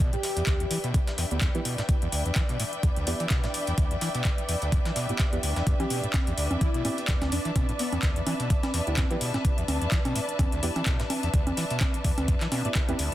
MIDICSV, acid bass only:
0, 0, Header, 1, 2, 480
1, 0, Start_track
1, 0, Time_signature, 4, 2, 24, 8
1, 0, Key_signature, 1, "minor"
1, 0, Tempo, 472441
1, 13354, End_track
2, 0, Start_track
2, 0, Title_t, "Acid bass"
2, 0, Program_c, 0, 38
2, 0, Note_on_c, 0, 47, 80
2, 108, Note_off_c, 0, 47, 0
2, 131, Note_on_c, 0, 45, 78
2, 166, Note_off_c, 0, 45, 0
2, 371, Note_on_c, 0, 40, 77
2, 430, Note_off_c, 0, 40, 0
2, 477, Note_on_c, 0, 38, 83
2, 588, Note_off_c, 0, 38, 0
2, 611, Note_on_c, 0, 40, 79
2, 670, Note_off_c, 0, 40, 0
2, 717, Note_on_c, 0, 52, 105
2, 791, Note_off_c, 0, 52, 0
2, 851, Note_on_c, 0, 47, 76
2, 939, Note_off_c, 0, 47, 0
2, 1198, Note_on_c, 0, 40, 81
2, 1272, Note_off_c, 0, 40, 0
2, 1332, Note_on_c, 0, 38, 76
2, 1419, Note_off_c, 0, 38, 0
2, 1572, Note_on_c, 0, 52, 102
2, 1630, Note_off_c, 0, 52, 0
2, 1679, Note_on_c, 0, 47, 80
2, 1789, Note_off_c, 0, 47, 0
2, 1812, Note_on_c, 0, 45, 73
2, 1847, Note_off_c, 0, 45, 0
2, 2053, Note_on_c, 0, 40, 82
2, 2111, Note_off_c, 0, 40, 0
2, 2158, Note_on_c, 0, 38, 79
2, 2269, Note_off_c, 0, 38, 0
2, 2292, Note_on_c, 0, 40, 80
2, 2351, Note_off_c, 0, 40, 0
2, 2398, Note_on_c, 0, 52, 98
2, 2472, Note_off_c, 0, 52, 0
2, 2533, Note_on_c, 0, 47, 77
2, 2620, Note_off_c, 0, 47, 0
2, 2638, Note_on_c, 0, 45, 75
2, 2682, Note_off_c, 0, 45, 0
2, 2878, Note_on_c, 0, 40, 81
2, 2952, Note_off_c, 0, 40, 0
2, 3012, Note_on_c, 0, 38, 75
2, 3100, Note_off_c, 0, 38, 0
2, 3118, Note_on_c, 0, 40, 76
2, 3192, Note_off_c, 0, 40, 0
2, 3252, Note_on_c, 0, 52, 100
2, 3310, Note_off_c, 0, 52, 0
2, 3358, Note_on_c, 0, 47, 83
2, 3469, Note_off_c, 0, 47, 0
2, 3493, Note_on_c, 0, 45, 78
2, 3527, Note_off_c, 0, 45, 0
2, 3732, Note_on_c, 0, 40, 71
2, 3790, Note_off_c, 0, 40, 0
2, 3839, Note_on_c, 0, 38, 84
2, 3949, Note_off_c, 0, 38, 0
2, 3973, Note_on_c, 0, 40, 82
2, 4031, Note_off_c, 0, 40, 0
2, 4078, Note_on_c, 0, 52, 103
2, 4152, Note_off_c, 0, 52, 0
2, 4213, Note_on_c, 0, 47, 78
2, 4300, Note_off_c, 0, 47, 0
2, 4558, Note_on_c, 0, 40, 78
2, 4632, Note_off_c, 0, 40, 0
2, 4692, Note_on_c, 0, 38, 77
2, 4779, Note_off_c, 0, 38, 0
2, 4797, Note_on_c, 0, 40, 85
2, 4872, Note_off_c, 0, 40, 0
2, 4932, Note_on_c, 0, 52, 104
2, 4990, Note_off_c, 0, 52, 0
2, 5038, Note_on_c, 0, 47, 75
2, 5148, Note_off_c, 0, 47, 0
2, 5171, Note_on_c, 0, 45, 80
2, 5207, Note_off_c, 0, 45, 0
2, 5411, Note_on_c, 0, 40, 75
2, 5470, Note_off_c, 0, 40, 0
2, 5517, Note_on_c, 0, 38, 80
2, 5628, Note_off_c, 0, 38, 0
2, 5651, Note_on_c, 0, 40, 77
2, 5710, Note_off_c, 0, 40, 0
2, 5757, Note_on_c, 0, 40, 85
2, 5831, Note_off_c, 0, 40, 0
2, 5891, Note_on_c, 0, 52, 111
2, 5950, Note_off_c, 0, 52, 0
2, 5997, Note_on_c, 0, 47, 80
2, 6108, Note_off_c, 0, 47, 0
2, 6131, Note_on_c, 0, 45, 74
2, 6167, Note_off_c, 0, 45, 0
2, 6371, Note_on_c, 0, 40, 76
2, 6430, Note_off_c, 0, 40, 0
2, 6477, Note_on_c, 0, 38, 78
2, 6588, Note_off_c, 0, 38, 0
2, 6611, Note_on_c, 0, 40, 78
2, 6670, Note_off_c, 0, 40, 0
2, 6716, Note_on_c, 0, 52, 101
2, 6791, Note_off_c, 0, 52, 0
2, 6850, Note_on_c, 0, 47, 77
2, 6939, Note_off_c, 0, 47, 0
2, 6957, Note_on_c, 0, 45, 74
2, 7002, Note_off_c, 0, 45, 0
2, 7197, Note_on_c, 0, 40, 81
2, 7271, Note_off_c, 0, 40, 0
2, 7330, Note_on_c, 0, 38, 78
2, 7419, Note_off_c, 0, 38, 0
2, 7437, Note_on_c, 0, 40, 80
2, 7511, Note_off_c, 0, 40, 0
2, 7571, Note_on_c, 0, 52, 102
2, 7630, Note_off_c, 0, 52, 0
2, 7677, Note_on_c, 0, 47, 87
2, 7788, Note_off_c, 0, 47, 0
2, 7811, Note_on_c, 0, 45, 79
2, 7847, Note_off_c, 0, 45, 0
2, 8051, Note_on_c, 0, 40, 75
2, 8110, Note_off_c, 0, 40, 0
2, 8157, Note_on_c, 0, 38, 80
2, 8268, Note_off_c, 0, 38, 0
2, 8291, Note_on_c, 0, 40, 78
2, 8350, Note_off_c, 0, 40, 0
2, 8397, Note_on_c, 0, 52, 106
2, 8471, Note_off_c, 0, 52, 0
2, 8532, Note_on_c, 0, 47, 76
2, 8619, Note_off_c, 0, 47, 0
2, 8637, Note_on_c, 0, 45, 82
2, 8682, Note_off_c, 0, 45, 0
2, 8878, Note_on_c, 0, 40, 78
2, 8952, Note_off_c, 0, 40, 0
2, 9012, Note_on_c, 0, 38, 78
2, 9099, Note_off_c, 0, 38, 0
2, 9117, Note_on_c, 0, 40, 84
2, 9192, Note_off_c, 0, 40, 0
2, 9252, Note_on_c, 0, 52, 101
2, 9310, Note_off_c, 0, 52, 0
2, 9358, Note_on_c, 0, 47, 80
2, 9469, Note_off_c, 0, 47, 0
2, 9492, Note_on_c, 0, 45, 74
2, 9527, Note_off_c, 0, 45, 0
2, 9732, Note_on_c, 0, 40, 80
2, 9790, Note_off_c, 0, 40, 0
2, 9837, Note_on_c, 0, 38, 80
2, 9948, Note_off_c, 0, 38, 0
2, 9971, Note_on_c, 0, 40, 77
2, 10030, Note_off_c, 0, 40, 0
2, 10077, Note_on_c, 0, 52, 103
2, 10151, Note_off_c, 0, 52, 0
2, 10211, Note_on_c, 0, 47, 76
2, 10299, Note_off_c, 0, 47, 0
2, 10318, Note_on_c, 0, 45, 77
2, 10362, Note_off_c, 0, 45, 0
2, 10557, Note_on_c, 0, 40, 86
2, 10632, Note_off_c, 0, 40, 0
2, 10692, Note_on_c, 0, 38, 77
2, 10779, Note_off_c, 0, 38, 0
2, 10798, Note_on_c, 0, 40, 79
2, 10872, Note_off_c, 0, 40, 0
2, 10932, Note_on_c, 0, 52, 103
2, 10990, Note_off_c, 0, 52, 0
2, 11038, Note_on_c, 0, 47, 80
2, 11149, Note_off_c, 0, 47, 0
2, 11172, Note_on_c, 0, 45, 77
2, 11207, Note_off_c, 0, 45, 0
2, 11412, Note_on_c, 0, 40, 74
2, 11470, Note_off_c, 0, 40, 0
2, 11518, Note_on_c, 0, 38, 83
2, 11628, Note_off_c, 0, 38, 0
2, 11652, Note_on_c, 0, 40, 81
2, 11710, Note_off_c, 0, 40, 0
2, 11757, Note_on_c, 0, 52, 107
2, 11831, Note_off_c, 0, 52, 0
2, 11892, Note_on_c, 0, 47, 78
2, 11979, Note_off_c, 0, 47, 0
2, 12238, Note_on_c, 0, 40, 75
2, 12312, Note_off_c, 0, 40, 0
2, 12373, Note_on_c, 0, 38, 81
2, 12460, Note_off_c, 0, 38, 0
2, 12478, Note_on_c, 0, 40, 82
2, 12552, Note_off_c, 0, 40, 0
2, 12612, Note_on_c, 0, 52, 100
2, 12670, Note_off_c, 0, 52, 0
2, 12718, Note_on_c, 0, 47, 76
2, 12829, Note_off_c, 0, 47, 0
2, 12851, Note_on_c, 0, 45, 81
2, 12887, Note_off_c, 0, 45, 0
2, 13092, Note_on_c, 0, 40, 77
2, 13150, Note_off_c, 0, 40, 0
2, 13198, Note_on_c, 0, 38, 76
2, 13309, Note_off_c, 0, 38, 0
2, 13354, End_track
0, 0, End_of_file